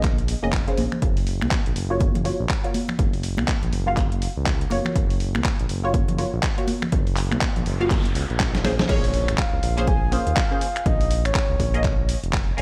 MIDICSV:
0, 0, Header, 1, 7, 480
1, 0, Start_track
1, 0, Key_signature, -5, "minor"
1, 0, Tempo, 491803
1, 998, Time_signature, 4, 2, 24, 8
1, 12314, End_track
2, 0, Start_track
2, 0, Title_t, "Soft synth lead"
2, 0, Program_c, 0, 80
2, 8678, Note_on_c, 0, 73, 99
2, 9124, Note_off_c, 0, 73, 0
2, 9158, Note_on_c, 0, 77, 103
2, 9639, Note_on_c, 0, 80, 119
2, 9654, Note_off_c, 0, 77, 0
2, 9881, Note_on_c, 0, 77, 125
2, 9895, Note_off_c, 0, 80, 0
2, 10355, Note_off_c, 0, 77, 0
2, 10361, Note_on_c, 0, 77, 101
2, 10583, Note_off_c, 0, 77, 0
2, 10600, Note_on_c, 0, 75, 104
2, 10956, Note_off_c, 0, 75, 0
2, 10984, Note_on_c, 0, 73, 97
2, 11904, Note_off_c, 0, 73, 0
2, 12278, Note_on_c, 0, 75, 107
2, 12314, Note_off_c, 0, 75, 0
2, 12314, End_track
3, 0, Start_track
3, 0, Title_t, "Synth stab"
3, 0, Program_c, 1, 62
3, 415, Note_on_c, 1, 58, 101
3, 419, Note_on_c, 1, 61, 94
3, 423, Note_on_c, 1, 68, 98
3, 426, Note_on_c, 1, 75, 118
3, 566, Note_off_c, 1, 58, 0
3, 568, Note_off_c, 1, 61, 0
3, 570, Note_off_c, 1, 68, 0
3, 572, Note_off_c, 1, 75, 0
3, 655, Note_on_c, 1, 58, 86
3, 659, Note_on_c, 1, 61, 80
3, 662, Note_on_c, 1, 68, 82
3, 666, Note_on_c, 1, 72, 101
3, 983, Note_off_c, 1, 58, 0
3, 985, Note_off_c, 1, 61, 0
3, 987, Note_off_c, 1, 68, 0
3, 989, Note_off_c, 1, 72, 0
3, 1855, Note_on_c, 1, 58, 87
3, 1859, Note_on_c, 1, 65, 83
3, 1862, Note_on_c, 1, 66, 81
3, 1866, Note_on_c, 1, 73, 100
3, 2006, Note_off_c, 1, 58, 0
3, 2008, Note_off_c, 1, 65, 0
3, 2010, Note_off_c, 1, 66, 0
3, 2012, Note_off_c, 1, 73, 0
3, 2191, Note_on_c, 1, 58, 70
3, 2195, Note_on_c, 1, 65, 67
3, 2199, Note_on_c, 1, 66, 65
3, 2203, Note_on_c, 1, 73, 83
3, 2372, Note_off_c, 1, 58, 0
3, 2375, Note_off_c, 1, 65, 0
3, 2376, Note_off_c, 1, 66, 0
3, 2378, Note_off_c, 1, 73, 0
3, 2575, Note_on_c, 1, 58, 83
3, 2579, Note_on_c, 1, 65, 73
3, 2583, Note_on_c, 1, 66, 74
3, 2587, Note_on_c, 1, 73, 87
3, 2726, Note_off_c, 1, 58, 0
3, 2728, Note_off_c, 1, 65, 0
3, 2730, Note_off_c, 1, 66, 0
3, 2732, Note_off_c, 1, 73, 0
3, 3775, Note_on_c, 1, 58, 96
3, 3778, Note_on_c, 1, 65, 85
3, 3783, Note_on_c, 1, 66, 83
3, 3786, Note_on_c, 1, 77, 103
3, 3860, Note_off_c, 1, 58, 0
3, 3862, Note_off_c, 1, 65, 0
3, 3864, Note_off_c, 1, 66, 0
3, 3866, Note_off_c, 1, 77, 0
3, 4585, Note_on_c, 1, 58, 92
3, 4593, Note_on_c, 1, 65, 80
3, 4600, Note_on_c, 1, 66, 80
3, 4608, Note_on_c, 1, 73, 100
3, 5661, Note_off_c, 1, 58, 0
3, 5665, Note_off_c, 1, 65, 0
3, 5668, Note_off_c, 1, 66, 0
3, 5672, Note_off_c, 1, 73, 0
3, 5695, Note_on_c, 1, 58, 88
3, 5699, Note_on_c, 1, 65, 83
3, 5703, Note_on_c, 1, 66, 84
3, 5706, Note_on_c, 1, 73, 100
3, 5846, Note_off_c, 1, 58, 0
3, 5848, Note_off_c, 1, 65, 0
3, 5850, Note_off_c, 1, 66, 0
3, 5852, Note_off_c, 1, 73, 0
3, 6032, Note_on_c, 1, 58, 73
3, 6035, Note_on_c, 1, 65, 66
3, 6039, Note_on_c, 1, 66, 67
3, 6042, Note_on_c, 1, 73, 81
3, 6213, Note_off_c, 1, 58, 0
3, 6214, Note_off_c, 1, 65, 0
3, 6217, Note_off_c, 1, 66, 0
3, 6218, Note_off_c, 1, 73, 0
3, 6414, Note_on_c, 1, 58, 78
3, 6418, Note_on_c, 1, 65, 74
3, 6422, Note_on_c, 1, 66, 75
3, 6426, Note_on_c, 1, 73, 90
3, 6566, Note_off_c, 1, 58, 0
3, 6567, Note_off_c, 1, 65, 0
3, 6569, Note_off_c, 1, 66, 0
3, 6571, Note_off_c, 1, 73, 0
3, 7614, Note_on_c, 1, 58, 92
3, 7618, Note_on_c, 1, 65, 83
3, 7622, Note_on_c, 1, 66, 83
3, 7625, Note_on_c, 1, 77, 100
3, 7700, Note_off_c, 1, 58, 0
3, 7702, Note_off_c, 1, 65, 0
3, 7704, Note_off_c, 1, 66, 0
3, 7705, Note_off_c, 1, 77, 0
3, 8432, Note_on_c, 1, 58, 88
3, 8435, Note_on_c, 1, 61, 81
3, 8439, Note_on_c, 1, 68, 84
3, 8443, Note_on_c, 1, 72, 97
3, 8654, Note_off_c, 1, 58, 0
3, 8662, Note_off_c, 1, 61, 0
3, 8666, Note_on_c, 1, 58, 98
3, 8669, Note_off_c, 1, 68, 0
3, 8674, Note_on_c, 1, 61, 90
3, 8681, Note_on_c, 1, 68, 94
3, 8689, Note_on_c, 1, 73, 111
3, 8921, Note_off_c, 1, 72, 0
3, 9392, Note_off_c, 1, 58, 0
3, 9396, Note_off_c, 1, 61, 0
3, 9400, Note_off_c, 1, 68, 0
3, 9404, Note_off_c, 1, 73, 0
3, 9535, Note_on_c, 1, 58, 90
3, 9539, Note_on_c, 1, 61, 82
3, 9542, Note_on_c, 1, 68, 86
3, 9546, Note_on_c, 1, 72, 102
3, 9686, Note_off_c, 1, 58, 0
3, 9688, Note_off_c, 1, 61, 0
3, 9689, Note_off_c, 1, 68, 0
3, 9691, Note_off_c, 1, 72, 0
3, 9872, Note_on_c, 1, 58, 76
3, 9876, Note_on_c, 1, 61, 67
3, 9880, Note_on_c, 1, 68, 67
3, 9883, Note_on_c, 1, 72, 81
3, 10053, Note_off_c, 1, 58, 0
3, 10055, Note_off_c, 1, 61, 0
3, 10057, Note_off_c, 1, 68, 0
3, 10059, Note_off_c, 1, 72, 0
3, 10256, Note_on_c, 1, 58, 77
3, 10260, Note_on_c, 1, 61, 72
3, 10264, Note_on_c, 1, 68, 70
3, 10268, Note_on_c, 1, 72, 84
3, 10407, Note_off_c, 1, 58, 0
3, 10408, Note_off_c, 1, 61, 0
3, 10410, Note_off_c, 1, 68, 0
3, 10412, Note_off_c, 1, 72, 0
3, 11456, Note_on_c, 1, 58, 95
3, 11460, Note_on_c, 1, 61, 85
3, 11464, Note_on_c, 1, 68, 84
3, 11467, Note_on_c, 1, 75, 102
3, 11541, Note_off_c, 1, 58, 0
3, 11543, Note_off_c, 1, 61, 0
3, 11545, Note_off_c, 1, 68, 0
3, 11546, Note_off_c, 1, 75, 0
3, 12268, Note_on_c, 1, 58, 92
3, 12275, Note_on_c, 1, 61, 81
3, 12283, Note_on_c, 1, 68, 83
3, 12314, Note_off_c, 1, 58, 0
3, 12314, Note_off_c, 1, 61, 0
3, 12314, Note_off_c, 1, 68, 0
3, 12314, End_track
4, 0, Start_track
4, 0, Title_t, "Analog synth bass"
4, 0, Program_c, 2, 38
4, 0, Note_on_c, 2, 34, 94
4, 334, Note_off_c, 2, 34, 0
4, 420, Note_on_c, 2, 29, 87
4, 699, Note_off_c, 2, 29, 0
4, 757, Note_on_c, 2, 34, 85
4, 846, Note_off_c, 2, 34, 0
4, 997, Note_on_c, 2, 30, 100
4, 1381, Note_on_c, 2, 37, 89
4, 1395, Note_off_c, 2, 30, 0
4, 1441, Note_off_c, 2, 37, 0
4, 1621, Note_on_c, 2, 34, 88
4, 1681, Note_off_c, 2, 34, 0
4, 1717, Note_on_c, 2, 30, 96
4, 2254, Note_off_c, 2, 30, 0
4, 2340, Note_on_c, 2, 34, 99
4, 2401, Note_off_c, 2, 34, 0
4, 2917, Note_on_c, 2, 30, 94
4, 3300, Note_on_c, 2, 37, 92
4, 3315, Note_off_c, 2, 30, 0
4, 3361, Note_off_c, 2, 37, 0
4, 3540, Note_on_c, 2, 34, 88
4, 3601, Note_off_c, 2, 34, 0
4, 3637, Note_on_c, 2, 30, 100
4, 4174, Note_off_c, 2, 30, 0
4, 4261, Note_on_c, 2, 37, 85
4, 4539, Note_off_c, 2, 37, 0
4, 4596, Note_on_c, 2, 30, 85
4, 4686, Note_off_c, 2, 30, 0
4, 4837, Note_on_c, 2, 30, 98
4, 5220, Note_on_c, 2, 37, 93
4, 5234, Note_off_c, 2, 30, 0
4, 5281, Note_off_c, 2, 37, 0
4, 5461, Note_on_c, 2, 34, 87
4, 5521, Note_off_c, 2, 34, 0
4, 5558, Note_on_c, 2, 30, 93
4, 6094, Note_off_c, 2, 30, 0
4, 6181, Note_on_c, 2, 34, 99
4, 6241, Note_off_c, 2, 34, 0
4, 6757, Note_on_c, 2, 30, 95
4, 7141, Note_on_c, 2, 37, 95
4, 7156, Note_off_c, 2, 30, 0
4, 7201, Note_off_c, 2, 37, 0
4, 7381, Note_on_c, 2, 34, 88
4, 7441, Note_off_c, 2, 34, 0
4, 7478, Note_on_c, 2, 30, 100
4, 7952, Note_off_c, 2, 30, 0
4, 7958, Note_on_c, 2, 37, 92
4, 8047, Note_off_c, 2, 37, 0
4, 8101, Note_on_c, 2, 34, 86
4, 8619, Note_off_c, 2, 34, 0
4, 8678, Note_on_c, 2, 34, 98
4, 9061, Note_on_c, 2, 32, 93
4, 9075, Note_off_c, 2, 34, 0
4, 9121, Note_off_c, 2, 32, 0
4, 9300, Note_on_c, 2, 37, 85
4, 9361, Note_off_c, 2, 37, 0
4, 9397, Note_on_c, 2, 34, 96
4, 9934, Note_off_c, 2, 34, 0
4, 10021, Note_on_c, 2, 39, 99
4, 10081, Note_off_c, 2, 39, 0
4, 10598, Note_on_c, 2, 34, 98
4, 10982, Note_on_c, 2, 32, 90
4, 10997, Note_off_c, 2, 34, 0
4, 11042, Note_off_c, 2, 32, 0
4, 11222, Note_on_c, 2, 37, 88
4, 11282, Note_off_c, 2, 37, 0
4, 11318, Note_on_c, 2, 34, 96
4, 11855, Note_off_c, 2, 34, 0
4, 11942, Note_on_c, 2, 29, 86
4, 12219, Note_off_c, 2, 29, 0
4, 12278, Note_on_c, 2, 34, 82
4, 12314, Note_off_c, 2, 34, 0
4, 12314, End_track
5, 0, Start_track
5, 0, Title_t, "Impact"
5, 0, Program_c, 3, 103
5, 8678, Note_on_c, 3, 60, 76
5, 10598, Note_off_c, 3, 60, 0
5, 12314, End_track
6, 0, Start_track
6, 0, Title_t, "Noise sweep"
6, 0, Program_c, 4, 103
6, 6758, Note_on_c, 4, 60, 74
6, 8678, Note_off_c, 4, 60, 0
6, 12314, End_track
7, 0, Start_track
7, 0, Title_t, "Drums"
7, 33, Note_on_c, 9, 39, 63
7, 33, Note_on_c, 9, 63, 66
7, 37, Note_on_c, 9, 36, 121
7, 37, Note_on_c, 9, 42, 77
7, 130, Note_off_c, 9, 63, 0
7, 131, Note_off_c, 9, 39, 0
7, 134, Note_off_c, 9, 36, 0
7, 134, Note_off_c, 9, 42, 0
7, 180, Note_on_c, 9, 42, 51
7, 276, Note_on_c, 9, 46, 113
7, 277, Note_off_c, 9, 42, 0
7, 374, Note_off_c, 9, 46, 0
7, 513, Note_on_c, 9, 39, 116
7, 516, Note_on_c, 9, 42, 76
7, 517, Note_on_c, 9, 36, 118
7, 611, Note_off_c, 9, 39, 0
7, 614, Note_off_c, 9, 42, 0
7, 615, Note_off_c, 9, 36, 0
7, 660, Note_on_c, 9, 42, 52
7, 756, Note_on_c, 9, 46, 104
7, 757, Note_off_c, 9, 42, 0
7, 762, Note_on_c, 9, 63, 103
7, 854, Note_off_c, 9, 46, 0
7, 860, Note_off_c, 9, 63, 0
7, 900, Note_on_c, 9, 26, 60
7, 901, Note_on_c, 9, 64, 76
7, 997, Note_off_c, 9, 26, 0
7, 997, Note_on_c, 9, 36, 117
7, 997, Note_on_c, 9, 42, 74
7, 998, Note_off_c, 9, 64, 0
7, 1094, Note_off_c, 9, 42, 0
7, 1095, Note_off_c, 9, 36, 0
7, 1140, Note_on_c, 9, 46, 61
7, 1237, Note_off_c, 9, 46, 0
7, 1237, Note_on_c, 9, 46, 100
7, 1335, Note_off_c, 9, 46, 0
7, 1381, Note_on_c, 9, 26, 65
7, 1388, Note_on_c, 9, 63, 85
7, 1474, Note_on_c, 9, 39, 115
7, 1477, Note_on_c, 9, 36, 118
7, 1477, Note_on_c, 9, 42, 73
7, 1479, Note_off_c, 9, 26, 0
7, 1485, Note_off_c, 9, 63, 0
7, 1572, Note_off_c, 9, 39, 0
7, 1575, Note_off_c, 9, 36, 0
7, 1575, Note_off_c, 9, 42, 0
7, 1621, Note_on_c, 9, 42, 49
7, 1717, Note_on_c, 9, 46, 107
7, 1719, Note_off_c, 9, 42, 0
7, 1815, Note_off_c, 9, 46, 0
7, 1952, Note_on_c, 9, 63, 61
7, 1957, Note_on_c, 9, 36, 118
7, 1957, Note_on_c, 9, 42, 74
7, 2049, Note_off_c, 9, 63, 0
7, 2055, Note_off_c, 9, 36, 0
7, 2055, Note_off_c, 9, 42, 0
7, 2100, Note_on_c, 9, 64, 90
7, 2101, Note_on_c, 9, 42, 50
7, 2197, Note_on_c, 9, 46, 103
7, 2198, Note_off_c, 9, 64, 0
7, 2199, Note_off_c, 9, 42, 0
7, 2295, Note_off_c, 9, 46, 0
7, 2434, Note_on_c, 9, 39, 116
7, 2437, Note_on_c, 9, 36, 118
7, 2437, Note_on_c, 9, 42, 79
7, 2531, Note_off_c, 9, 39, 0
7, 2535, Note_off_c, 9, 36, 0
7, 2535, Note_off_c, 9, 42, 0
7, 2580, Note_on_c, 9, 42, 51
7, 2677, Note_on_c, 9, 46, 108
7, 2678, Note_off_c, 9, 42, 0
7, 2679, Note_on_c, 9, 63, 86
7, 2775, Note_off_c, 9, 46, 0
7, 2776, Note_off_c, 9, 63, 0
7, 2815, Note_on_c, 9, 64, 78
7, 2821, Note_on_c, 9, 26, 65
7, 2913, Note_off_c, 9, 64, 0
7, 2917, Note_on_c, 9, 36, 115
7, 2917, Note_on_c, 9, 42, 78
7, 2918, Note_off_c, 9, 26, 0
7, 3015, Note_off_c, 9, 36, 0
7, 3015, Note_off_c, 9, 42, 0
7, 3059, Note_on_c, 9, 46, 60
7, 3156, Note_off_c, 9, 46, 0
7, 3156, Note_on_c, 9, 46, 98
7, 3254, Note_off_c, 9, 46, 0
7, 3294, Note_on_c, 9, 63, 93
7, 3301, Note_on_c, 9, 26, 65
7, 3391, Note_off_c, 9, 63, 0
7, 3394, Note_on_c, 9, 39, 115
7, 3397, Note_on_c, 9, 36, 110
7, 3398, Note_off_c, 9, 26, 0
7, 3398, Note_on_c, 9, 42, 82
7, 3492, Note_off_c, 9, 39, 0
7, 3495, Note_off_c, 9, 36, 0
7, 3495, Note_off_c, 9, 42, 0
7, 3538, Note_on_c, 9, 64, 74
7, 3541, Note_on_c, 9, 42, 51
7, 3636, Note_off_c, 9, 64, 0
7, 3637, Note_on_c, 9, 46, 99
7, 3638, Note_off_c, 9, 42, 0
7, 3734, Note_off_c, 9, 46, 0
7, 3874, Note_on_c, 9, 39, 57
7, 3876, Note_on_c, 9, 63, 57
7, 3877, Note_on_c, 9, 36, 118
7, 3877, Note_on_c, 9, 42, 77
7, 3972, Note_off_c, 9, 39, 0
7, 3974, Note_off_c, 9, 36, 0
7, 3974, Note_off_c, 9, 63, 0
7, 3975, Note_off_c, 9, 42, 0
7, 4020, Note_on_c, 9, 42, 52
7, 4117, Note_on_c, 9, 46, 103
7, 4118, Note_off_c, 9, 42, 0
7, 4215, Note_off_c, 9, 46, 0
7, 4354, Note_on_c, 9, 39, 113
7, 4357, Note_on_c, 9, 36, 114
7, 4357, Note_on_c, 9, 42, 79
7, 4452, Note_off_c, 9, 39, 0
7, 4454, Note_off_c, 9, 36, 0
7, 4455, Note_off_c, 9, 42, 0
7, 4501, Note_on_c, 9, 42, 56
7, 4591, Note_on_c, 9, 63, 86
7, 4598, Note_on_c, 9, 46, 99
7, 4599, Note_off_c, 9, 42, 0
7, 4688, Note_off_c, 9, 63, 0
7, 4696, Note_off_c, 9, 46, 0
7, 4732, Note_on_c, 9, 64, 79
7, 4741, Note_on_c, 9, 26, 68
7, 4830, Note_off_c, 9, 64, 0
7, 4837, Note_on_c, 9, 36, 105
7, 4837, Note_on_c, 9, 42, 80
7, 4839, Note_off_c, 9, 26, 0
7, 4934, Note_off_c, 9, 36, 0
7, 4935, Note_off_c, 9, 42, 0
7, 4981, Note_on_c, 9, 46, 60
7, 5078, Note_off_c, 9, 46, 0
7, 5078, Note_on_c, 9, 46, 95
7, 5175, Note_off_c, 9, 46, 0
7, 5220, Note_on_c, 9, 26, 67
7, 5221, Note_on_c, 9, 63, 93
7, 5313, Note_on_c, 9, 39, 114
7, 5317, Note_on_c, 9, 36, 116
7, 5317, Note_on_c, 9, 42, 81
7, 5318, Note_off_c, 9, 26, 0
7, 5318, Note_off_c, 9, 63, 0
7, 5411, Note_off_c, 9, 39, 0
7, 5414, Note_off_c, 9, 36, 0
7, 5414, Note_off_c, 9, 42, 0
7, 5460, Note_on_c, 9, 42, 53
7, 5556, Note_on_c, 9, 46, 100
7, 5558, Note_off_c, 9, 42, 0
7, 5654, Note_off_c, 9, 46, 0
7, 5797, Note_on_c, 9, 36, 112
7, 5797, Note_on_c, 9, 42, 82
7, 5800, Note_on_c, 9, 63, 58
7, 5894, Note_off_c, 9, 36, 0
7, 5894, Note_off_c, 9, 42, 0
7, 5898, Note_off_c, 9, 63, 0
7, 5937, Note_on_c, 9, 64, 94
7, 5940, Note_on_c, 9, 42, 54
7, 6035, Note_off_c, 9, 64, 0
7, 6036, Note_on_c, 9, 46, 104
7, 6038, Note_off_c, 9, 42, 0
7, 6134, Note_off_c, 9, 46, 0
7, 6273, Note_on_c, 9, 39, 116
7, 6276, Note_on_c, 9, 42, 85
7, 6277, Note_on_c, 9, 36, 113
7, 6370, Note_off_c, 9, 39, 0
7, 6374, Note_off_c, 9, 42, 0
7, 6375, Note_off_c, 9, 36, 0
7, 6421, Note_on_c, 9, 42, 57
7, 6515, Note_on_c, 9, 63, 96
7, 6517, Note_on_c, 9, 46, 98
7, 6518, Note_off_c, 9, 42, 0
7, 6612, Note_off_c, 9, 63, 0
7, 6614, Note_off_c, 9, 46, 0
7, 6658, Note_on_c, 9, 64, 84
7, 6659, Note_on_c, 9, 26, 70
7, 6756, Note_off_c, 9, 64, 0
7, 6756, Note_on_c, 9, 42, 78
7, 6757, Note_off_c, 9, 26, 0
7, 6757, Note_on_c, 9, 36, 113
7, 6853, Note_off_c, 9, 42, 0
7, 6855, Note_off_c, 9, 36, 0
7, 6899, Note_on_c, 9, 46, 59
7, 6993, Note_on_c, 9, 39, 61
7, 6996, Note_off_c, 9, 46, 0
7, 6997, Note_on_c, 9, 46, 99
7, 7091, Note_off_c, 9, 39, 0
7, 7094, Note_off_c, 9, 46, 0
7, 7140, Note_on_c, 9, 26, 66
7, 7142, Note_on_c, 9, 63, 87
7, 7233, Note_on_c, 9, 39, 124
7, 7236, Note_on_c, 9, 42, 85
7, 7237, Note_off_c, 9, 26, 0
7, 7237, Note_on_c, 9, 36, 113
7, 7240, Note_off_c, 9, 63, 0
7, 7330, Note_off_c, 9, 39, 0
7, 7334, Note_off_c, 9, 42, 0
7, 7335, Note_off_c, 9, 36, 0
7, 7379, Note_on_c, 9, 42, 54
7, 7384, Note_on_c, 9, 64, 74
7, 7476, Note_on_c, 9, 46, 103
7, 7477, Note_off_c, 9, 42, 0
7, 7482, Note_off_c, 9, 64, 0
7, 7574, Note_off_c, 9, 46, 0
7, 7620, Note_on_c, 9, 42, 39
7, 7714, Note_on_c, 9, 39, 62
7, 7717, Note_off_c, 9, 42, 0
7, 7717, Note_on_c, 9, 42, 85
7, 7718, Note_on_c, 9, 36, 116
7, 7721, Note_on_c, 9, 63, 67
7, 7811, Note_off_c, 9, 39, 0
7, 7815, Note_off_c, 9, 36, 0
7, 7815, Note_off_c, 9, 42, 0
7, 7819, Note_off_c, 9, 63, 0
7, 7860, Note_on_c, 9, 42, 54
7, 7957, Note_on_c, 9, 46, 103
7, 7958, Note_off_c, 9, 42, 0
7, 8055, Note_off_c, 9, 46, 0
7, 8101, Note_on_c, 9, 42, 39
7, 8194, Note_on_c, 9, 39, 122
7, 8198, Note_off_c, 9, 42, 0
7, 8198, Note_on_c, 9, 36, 114
7, 8198, Note_on_c, 9, 38, 61
7, 8198, Note_on_c, 9, 42, 84
7, 8292, Note_off_c, 9, 39, 0
7, 8295, Note_off_c, 9, 36, 0
7, 8295, Note_off_c, 9, 38, 0
7, 8295, Note_off_c, 9, 42, 0
7, 8342, Note_on_c, 9, 38, 65
7, 8342, Note_on_c, 9, 42, 60
7, 8437, Note_on_c, 9, 63, 84
7, 8439, Note_off_c, 9, 38, 0
7, 8439, Note_on_c, 9, 38, 87
7, 8439, Note_on_c, 9, 46, 101
7, 8440, Note_off_c, 9, 42, 0
7, 8535, Note_off_c, 9, 63, 0
7, 8536, Note_off_c, 9, 38, 0
7, 8536, Note_off_c, 9, 46, 0
7, 8581, Note_on_c, 9, 64, 89
7, 8583, Note_on_c, 9, 38, 84
7, 8583, Note_on_c, 9, 42, 38
7, 8678, Note_off_c, 9, 64, 0
7, 8678, Note_on_c, 9, 36, 119
7, 8679, Note_off_c, 9, 42, 0
7, 8679, Note_on_c, 9, 42, 57
7, 8679, Note_on_c, 9, 49, 104
7, 8680, Note_off_c, 9, 38, 0
7, 8775, Note_off_c, 9, 36, 0
7, 8776, Note_off_c, 9, 42, 0
7, 8776, Note_off_c, 9, 49, 0
7, 8822, Note_on_c, 9, 46, 64
7, 8917, Note_off_c, 9, 46, 0
7, 8917, Note_on_c, 9, 46, 97
7, 9015, Note_off_c, 9, 46, 0
7, 9061, Note_on_c, 9, 26, 66
7, 9061, Note_on_c, 9, 42, 70
7, 9154, Note_on_c, 9, 39, 125
7, 9158, Note_off_c, 9, 26, 0
7, 9158, Note_off_c, 9, 42, 0
7, 9158, Note_on_c, 9, 36, 122
7, 9158, Note_on_c, 9, 42, 57
7, 9252, Note_off_c, 9, 39, 0
7, 9255, Note_off_c, 9, 36, 0
7, 9255, Note_off_c, 9, 42, 0
7, 9398, Note_on_c, 9, 46, 108
7, 9496, Note_off_c, 9, 46, 0
7, 9541, Note_on_c, 9, 42, 72
7, 9638, Note_off_c, 9, 42, 0
7, 9638, Note_on_c, 9, 36, 123
7, 9638, Note_on_c, 9, 42, 57
7, 9735, Note_off_c, 9, 36, 0
7, 9736, Note_off_c, 9, 42, 0
7, 9878, Note_on_c, 9, 46, 107
7, 9976, Note_off_c, 9, 46, 0
7, 10021, Note_on_c, 9, 42, 69
7, 10115, Note_on_c, 9, 39, 127
7, 10118, Note_on_c, 9, 36, 121
7, 10119, Note_off_c, 9, 42, 0
7, 10119, Note_on_c, 9, 42, 56
7, 10213, Note_off_c, 9, 39, 0
7, 10216, Note_off_c, 9, 36, 0
7, 10216, Note_off_c, 9, 42, 0
7, 10358, Note_on_c, 9, 46, 104
7, 10456, Note_off_c, 9, 46, 0
7, 10502, Note_on_c, 9, 26, 65
7, 10502, Note_on_c, 9, 42, 70
7, 10598, Note_on_c, 9, 36, 120
7, 10599, Note_off_c, 9, 42, 0
7, 10599, Note_on_c, 9, 42, 51
7, 10600, Note_off_c, 9, 26, 0
7, 10696, Note_off_c, 9, 36, 0
7, 10697, Note_off_c, 9, 42, 0
7, 10743, Note_on_c, 9, 46, 66
7, 10840, Note_off_c, 9, 46, 0
7, 10840, Note_on_c, 9, 46, 100
7, 10938, Note_off_c, 9, 46, 0
7, 10983, Note_on_c, 9, 26, 64
7, 10983, Note_on_c, 9, 42, 66
7, 11076, Note_on_c, 9, 39, 125
7, 11078, Note_on_c, 9, 36, 126
7, 11079, Note_off_c, 9, 42, 0
7, 11079, Note_on_c, 9, 42, 55
7, 11080, Note_off_c, 9, 26, 0
7, 11174, Note_off_c, 9, 39, 0
7, 11176, Note_off_c, 9, 36, 0
7, 11177, Note_off_c, 9, 42, 0
7, 11318, Note_on_c, 9, 36, 67
7, 11319, Note_on_c, 9, 46, 109
7, 11416, Note_off_c, 9, 36, 0
7, 11417, Note_off_c, 9, 46, 0
7, 11462, Note_on_c, 9, 42, 70
7, 11556, Note_on_c, 9, 39, 63
7, 11558, Note_on_c, 9, 36, 127
7, 11559, Note_off_c, 9, 42, 0
7, 11559, Note_on_c, 9, 42, 56
7, 11653, Note_off_c, 9, 39, 0
7, 11656, Note_off_c, 9, 36, 0
7, 11657, Note_off_c, 9, 42, 0
7, 11798, Note_on_c, 9, 46, 116
7, 11895, Note_off_c, 9, 46, 0
7, 11941, Note_on_c, 9, 42, 67
7, 12035, Note_on_c, 9, 39, 127
7, 12038, Note_off_c, 9, 42, 0
7, 12038, Note_on_c, 9, 36, 127
7, 12038, Note_on_c, 9, 42, 55
7, 12132, Note_off_c, 9, 39, 0
7, 12136, Note_off_c, 9, 36, 0
7, 12136, Note_off_c, 9, 42, 0
7, 12278, Note_on_c, 9, 46, 107
7, 12314, Note_off_c, 9, 46, 0
7, 12314, End_track
0, 0, End_of_file